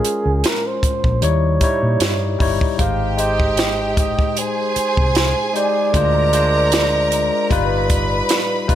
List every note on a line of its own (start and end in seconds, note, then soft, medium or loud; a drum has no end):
0.00 0.71 G#3 medium
0.00 0.71 C#4 medium
0.00 0.72 F4 medium
0.00 0.47 G#4 medium
0.00 0.72 A#4 medium
0.05 closed hi-hat medium
0.25 0.42 C#2 medium
0.44 0.68 A#4 medium
0.44 snare loud
0.44 closed hi-hat medium
0.66 1.25 C5 medium
0.83 muted fingered electric bass stroke soft
0.83 kick medium
0.83 closed hi-hat medium
1.04 1.20 A#1 medium
1.04 kick medium
1.22 1.57 D#2 medium
1.22 1.54 G3 medium
1.22 1.55 D#4 medium
1.22 1.55 E4 medium
1.22 2.41 C#5 medium
1.22 1.55 C#5 medium
1.22 closed hi-hat medium
1.61 2.14 G3 medium
1.61 2.15 D#4 medium
1.61 2.15 E4 medium
1.61 2.16 C#5 medium
1.61 kick medium
1.61 closed hi-hat medium
1.83 1.99 A#2 medium
2.00 2.35 G2 medium
2.00 snare loud
2.00 closed hi-hat medium
2.39 2.59 G1 medium
2.39 2.67 G3 medium
2.39 2.67 D#4 medium
2.39 2.68 E4 medium
2.39 2.68 C#5 medium
2.39 kick medium
2.39 open hi-hat medium
2.61 kick medium
2.78 4.14 G#1 medium
2.78 3.06 G#3 medium
2.78 3.06 D#4 medium
2.78 4.33 G4 medium
2.78 3.07 G4 medium
2.78 3.08 C5 medium
2.78 3.21 F5 medium
2.78 4.33 G5 medium
2.78 kick medium
2.78 closed hi-hat medium
3.17 4.23 G#3 medium
3.17 4.24 D#4 medium
3.17 4.24 G4 medium
3.17 4.25 C5 medium
3.17 3.98 D#5 loud
3.17 closed hi-hat medium
3.40 kick medium
3.57 snare loud
3.57 closed hi-hat medium
3.97 4.40 D#5 medium
3.97 kick medium
3.97 closed hi-hat medium
4.19 kick medium
4.35 5.90 G#4 medium
4.35 5.55 C5 medium
4.35 5.90 G#5 medium
4.35 closed hi-hat medium
4.76 muted fingered electric bass stroke soft
4.76 closed hi-hat medium
4.97 5.32 C2 medium
4.97 kick medium
5.15 snare loud
5.15 closed hi-hat medium
5.54 5.81 G#3 medium
5.54 5.82 D#4 medium
5.54 5.82 G4 medium
5.54 5.83 C5 medium
5.54 8.65 D5 medium
5.54 closed hi-hat medium
5.93 7.29 D2 medium
5.93 6.21 G#3 medium
5.93 6.21 D4 medium
5.93 6.22 F4 medium
5.93 7.48 A#4 medium
5.93 6.22 C5 medium
5.93 7.48 A#5 medium
5.93 kick medium
5.93 closed hi-hat medium
6.32 7.38 G#3 medium
6.32 7.38 D4 medium
6.32 7.39 F4 medium
6.32 7.39 C5 medium
6.32 closed hi-hat medium
6.72 snare loud
6.72 closed hi-hat medium
7.12 closed hi-hat medium
7.50 8.20 G1 medium
7.50 8.46 G3 medium
7.50 8.46 D#4 medium
7.50 8.47 F4 medium
7.50 8.75 B4 medium
7.50 8.47 B4 medium
7.50 8.75 B5 medium
7.50 kick medium
7.50 closed hi-hat medium
7.90 kick medium
7.90 closed hi-hat medium
8.29 snare loud
8.29 closed hi-hat medium
8.67 8.75 B1 medium
8.67 8.75 G3 medium
8.67 8.75 D#4 medium
8.67 8.75 F4 medium
8.67 8.75 B4 medium
8.67 kick medium
8.67 closed hi-hat medium